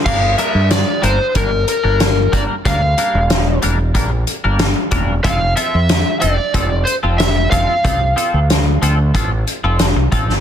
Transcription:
<<
  \new Staff \with { instrumentName = "Lead electric guitar" } { \time 4/4 \key g \dorian \tempo 4 = 92 f''8 e''8 d''8 c''8 bes'8 bes'4 d''8 | f''4. r2 r8 | f''8 e''4 d''4 c''8 e''8 f''8~ | f''4. r2 r8 | }
  \new Staff \with { instrumentName = "Clean electric guitar" } { \time 4/4 \key g \dorian <g bes d' bes'>16 r16 <g bes d' bes'>16 r8. <g bes d' bes'>16 r16 <g bes d' bes'>16 r8 <g bes d' bes'>16 r8 <g bes d' bes'>16 r16 | <g bes d' bes'>16 r16 <g bes d' bes'>16 r8. <g bes d' bes'>16 r16 <g bes d' bes'>16 r8 <g bes d' bes'>16 r8 <g bes d' bes'>16 r16 | <f c' f' a'>16 r16 <f c' f' a'>16 r8. <f c' f' a'>16 r16 <f c' f' a'>16 r8 <f c' f' a'>16 r8 <f c' f' a'>16 r16 | <f c' f' a'>16 r16 <f c' f' a'>16 r8. <f c' f' a'>16 r16 <f c' f' a'>16 r8 <f c' f' a'>16 r8 <f c' f' a'>16 r16 | }
  \new Staff \with { instrumentName = "Fingered electric bass" } { \clef bass \time 4/4 \key g \dorian g,,8 r16 g,8 r16 g,,16 r16 g,,8 r16 g,,8. g,,16 r16 | d,8 r16 e,,8. e,,8 bes,,8 r16 g,,8 r16 e,,8 | f,,8 r16 f,8 r16 f,,16 r16 f,,8 r16 f,,8. f,,16 r16 | c,8 r16 d,8. d,8 a,,8 r16 f,,8 c,16 a,,16 g,,16 | }
  \new DrumStaff \with { instrumentName = "Drums" } \drummode { \time 4/4 <cymc bd>8 hh8 <hh sn>8 hh8 <hh bd>8 hh8 <hh sn>8 <hh bd>8 | <hh bd>8 hh8 <hh sn>8 hh8 <hh bd>8 hh8 <hh sn>8 <hh bd>8 | <hh bd>8 hh8 <hh sn>8 hh8 <hh bd>8 hh8 <hh sn>8 <hh bd>8 | <hh bd>8 hh8 <hh sn>8 hh8 <hh bd>8 hh8 <hh sn>8 <hh bd>16 sn16 | }
>>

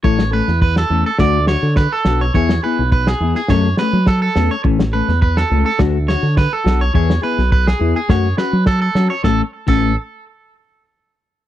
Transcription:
<<
  \new Staff \with { instrumentName = "Clean electric guitar" } { \time 4/4 \key a \major \tempo 4 = 104 cis''8 b'8 b'16 a'8 a'16 d''8 cis''8 b'16 a'8 cis''16 | cis''8 b'8 b'16 gis'8 gis'16 cis''8 b'8 a'16 a'8 cis''16 | r8 b'8 b'16 a'8 a'16 r8 cis''8 b'16 a'8 cis''16 | cis''8 b'8 b'16 gis'8 gis'16 cis''8 b'8 a'16 a'8 cis''16 |
a'16 r8 a'8 r2 r8. | }
  \new Staff \with { instrumentName = "Clean electric guitar" } { \time 4/4 \key a \major <e a cis' a'>16 r16 <a cis' a'>16 r8. <a cis' a'>16 r16 <a fis'>16 r16 <d' fis'>16 r8. <d' fis'>16 r16 | <e b e' gis'>16 r16 <b e' gis'>16 r8. <b e'>16 r16 <fis a cis' a'>16 r16 <a cis'>16 r8. <a cis' a'>16 r16 | <e a cis'>16 r16 <a cis' a'>16 r8. <a cis' a'>16 r16 <a d' fis'>16 r16 <d' fis'>16 r8. <d' fis'>16 r16 | <e b e' gis'>16 r16 <b e' gis'>16 r8. <b e' gis'>16 r16 <a fis'>16 r16 <cis' fis'>16 r8. <cis' fis'>16 r16 |
<a cis'>16 r8 <a cis'>8 r2 r8. | }
  \new Staff \with { instrumentName = "Fingered electric bass" } { \clef bass \time 4/4 \key a \major a,,8. e,8. e,16 r16 d,8. d8 r16 b,,8 | e,8 r16 b,,8. e,16 r16 fis,8 r16 fis8. e,16 r16 | a,,8. e,8. cis,16 r16 d,8. d8 r16 b,,8 | e,8 r16 b,,8. e,16 r16 fis,8 r16 fis8. fis16 r16 |
a,,16 r8 a,,8 r2 r8. | }
  \new DrumStaff \with { instrumentName = "Drums" } \drummode { \time 4/4 bd16 sn8 sn16 bd16 sn8. <bd sn>8 sn8 <bd sn>8 sn8 | bd16 sn8. bd16 sn8 sn16 <bd sn>8 sn8 <bd sn>8 sn8 | bd16 sn8 sn16 bd16 sn8. <bd sn>8 sn8 <bd sn>8 sn8 | bd16 sn8 sn16 bd16 sn8. <bd sn>8 sn8 <bd sn>8 sn8 |
<bd sn>8. <cymc bd>16 r4 r4 r4 | }
>>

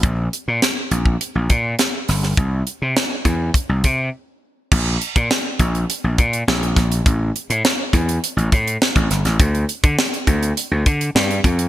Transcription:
<<
  \new Staff \with { instrumentName = "Slap bass" } { \clef bass \time 4/4 \key a \phrygian \tempo 4 = 102 bes,,8 r16 bes,16 r8 bes,,8 r16 bes,,16 bes,8 r8 g,,8 | c,8 r16 c16 r8 e,8 r16 c,16 c8 r4 | bes,,8 r16 bes,16 r8 bes,,8 r16 bes,,16 bes,8 bes,,8 bes,,8 | a,,8 r16 a,16 r8 e,8 r16 a,,16 a,8 r16 a,,16 g,,16 a,,16 |
d,8 r16 d16 r8 d,8 r16 d,16 d8 g,8 f,8 | }
  \new DrumStaff \with { instrumentName = "Drums" } \drummode { \time 4/4 <hh bd>8 hh8 <hh sn>8 hh16 bd16 hh8 <hh bd>8 <hh sn>8 <hho sn>16 sn16 | <hh bd>8 hh8 <hh sn>8 <hh bd>8 <hh bd>8 <hh bd>8 r4 | <cymc bd>8 hh16 <hh bd>16 sn8 <hh bd>16 hh16 hh8 <hh bd>16 hh16 sn16 hh16 <hh bd sn>16 hh16 | <hh bd>8 hh16 hh16 sn8 <hh bd>16 hh16 hh16 hh16 <hh bd>16 hh16 sn16 <hh bd>16 <hh sn>16 <hh sn>16 |
<hh bd>16 hh16 hh16 <hh bd>16 sn16 hh16 <hh bd>16 hh16 hh8 <hh bd>16 hh16 sn16 hh16 <hh bd>16 hh16 | }
>>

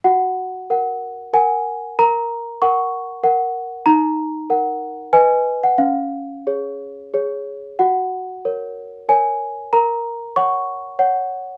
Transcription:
\new Staff \with { instrumentName = "Celesta" } { \time 3/4 \key fis \major \tempo 4 = 94 << { fis''2 gis''4 | ais''4 cis'''4. r8 | ais''2 gis''8. fis''16 | eis''2 r4 |
fis''2 gis''4 | ais''4 cis'''4. r8 | } \\ { fis'4 <ais' fis''>4 <ais' fis''>4 | ais'4 <ais' fis''>4 <ais' fis''>4 | dis'4 <ais' fis''>4 <b' dis''>4 | cis'4 <gis' cis''>4 <gis' cis''>4 |
fis'4 <ais' cis''>4 <ais' cis''>4 | ais'4 <cis'' fis''>4 <cis'' fis''>4 | } >> }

